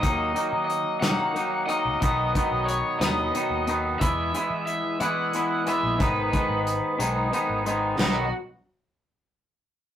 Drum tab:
CC |------|------|------|------|
HH |xxxxxx|xxxxxx|xxxxxx|xxxxxx|
SD |---o--|---o--|------|------|
BD |o-----|oo----|o-----|oo----|

CC |x-----|
HH |------|
SD |o-----|
BD |------|